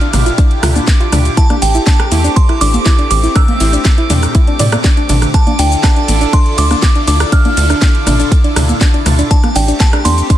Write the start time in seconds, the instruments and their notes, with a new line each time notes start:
Already playing: supersaw synth D3 D4 E4 F4 G4, synth texture D6, synth bell F6
0.01 synth pluck D4, closed hi-hat
0.13 analog synth bass A1, cross-stick, open hi-hat, mid tom, ride, high conga, shaker
0.26 synth pluck F4, closed hi-hat, shaker
0.38 synth pluck D4, kick, closed hi-hat, ride, shaker
0.51 closed hi-hat
0.63 analog synth bass D2, synth pluck F4, cross-stick, open hi-hat, mid tom, ride, shaker
0.76 synth pluck D4, closed hi-hat, high conga, shaker
0.87 kick, snare, closed hi-hat, ride, shaker
1.00 synth pluck F4, closed hi-hat
1.12 analog synth bass D2, synth pluck D4, cross-stick, open hi-hat, mid tom, ride, shaker
1.25 closed hi-hat, shaker
1.37 supersaw synth A3 C4, synth pluck E4, synth bell A5, kick, closed hi-hat, ride, shaker
1.50 synth pluck D4, cross-stick, closed hi-hat, high conga
1.62 analog synth bass A1, synth bell G5, open hi-hat, ride, shaker
1.75 synth pluck E4, closed hi-hat, shaker
1.87 synth pluck D4, synth bell A5, kick, snare, closed hi-hat, ride, shaker
2.00 cross-stick, closed hi-hat
2.11 analog synth bass E2, synth pluck E4, open hi-hat, ride, high conga, shaker
2.24 synth pluck D4, closed hi-hat, shaker
2.36 synth bell C6, kick, closed hi-hat, ride, shaker
2.49 synth pluck E4, cross-stick, closed hi-hat
2.61 analog synth bass A1, synth pluck D4, synth bell D6, open hi-hat, ride, shaker
2.74 closed hi-hat, high conga, shaker
2.86 synth pluck E4, kick, cross-stick, snare, closed hi-hat, ride, shaker
2.99 synth pluck D4, closed hi-hat
3.11 analog synth bass A1, synth bell D6, open hi-hat, ride, shaker
3.23 synth pluck E4, closed hi-hat, shaker
3.35 synth pluck D4, synth bell E6, kick, cross-stick, closed hi-hat, ride, shaker
3.48 closed hi-hat, high conga
3.60 analog synth bass A1, synth pluck E4, open hi-hat, ride, shaker
3.73 synth pluck D4, closed hi-hat, shaker
3.85 kick, cross-stick, snare, closed hi-hat, ride, shaker
3.98 synth pluck E4, closed hi-hat
4.10 analog synth bass E2, synth pluck D4, open hi-hat, mid tom, ride, high conga, shaker
4.23 cross-stick, closed hi-hat, shaker
4.35 synth pluck E4, kick, closed hi-hat, ride, shaker
4.47 synth pluck D4, closed hi-hat
4.59 analog synth bass A2, synth pluck D5, open hi-hat, mid tom, ride, shaker
4.72 synth pluck D5, cross-stick, closed hi-hat, high conga, shaker
4.84 synth pluck D4, kick, snare, closed hi-hat, ride, shaker
4.97 synth pluck D4, closed hi-hat
5.09 analog synth bass A1, synth pluck D4, open hi-hat, mid tom, ride, shaker
5.22 synth pluck D3, cross-stick, closed hi-hat, shaker
5.34 supersaw synth D3 D4 E4 F4 A4, synth bell A5, kick, cross-stick, closed hi-hat, ride, shaker
5.47 synth pluck D4, closed hi-hat, high conga
5.59 analog synth bass D2, synth pluck D4, synth bell G5, open hi-hat, ride, shaker
5.72 closed hi-hat, shaker
5.83 synth pluck D4, synth bell A5, kick, cross-stick, snare, closed hi-hat, ride, shaker
5.96 synth pluck D4, closed hi-hat
6.08 analog synth bass A1, open hi-hat, ride, high conga, shaker
6.21 synth pluck D4, closed hi-hat, shaker
6.33 synth pluck D4, synth bell C6, kick, cross-stick, closed hi-hat, ride, shaker
6.46 closed hi-hat
6.58 analog synth bass D2, synth pluck D4, synth bell D6, open hi-hat, ride, shaker
6.71 synth pluck D4, cross-stick, closed hi-hat, high conga, shaker
6.82 kick, snare, closed hi-hat, ride, shaker
6.95 synth pluck D4, closed hi-hat
7.07 analog synth bass D2, synth pluck D4, synth bell D6, open hi-hat, ride, shaker
7.20 cross-stick, closed hi-hat, shaker
7.32 synth pluck D4, synth bell F6, kick, closed hi-hat, ride, shaker
7.45 synth pluck D4, closed hi-hat, high conga
7.57 analog synth bass D2, open hi-hat, ride, shaker
7.70 synth pluck D4, cross-stick, closed hi-hat, shaker
7.82 synth pluck D4, kick, snare, closed hi-hat, ride, shaker
7.95 closed hi-hat
8.07 analog synth bass A1, synth pluck D4, cross-stick, open hi-hat, mid tom, ride, high conga, shaker
8.19 synth pluck D4, closed hi-hat, shaker
8.32 kick, closed hi-hat, ride, shaker
8.44 synth pluck D4, closed hi-hat
8.56 analog synth bass D2, synth pluck D4, cross-stick, open hi-hat, mid tom, ride, shaker
8.69 closed hi-hat, high conga, shaker
8.81 synth pluck D4, kick, snare, closed hi-hat, ride, shaker
8.94 synth pluck D4, closed hi-hat
9.06 analog synth bass D2, cross-stick, open hi-hat, mid tom, ride, shaker
9.19 synth pluck D4, closed hi-hat, shaker
9.31 supersaw synth A3 C4 G4, synth pluck D4, synth bell A5, kick, closed hi-hat, ride, shaker
9.43 cross-stick, closed hi-hat, high conga
9.55 analog synth bass A1, synth pluck D4, synth bell G5, open hi-hat, ride, shaker
9.68 synth pluck D4, closed hi-hat, shaker
9.80 synth bell A5, kick, snare, closed hi-hat, ride, shaker
9.93 synth pluck D4, cross-stick, closed hi-hat
10.05 analog synth bass E2, synth pluck D4, synth bell C6, open hi-hat, ride, high conga, shaker
10.18 closed hi-hat, shaker
10.30 synth pluck D4, kick, closed hi-hat, ride, shaker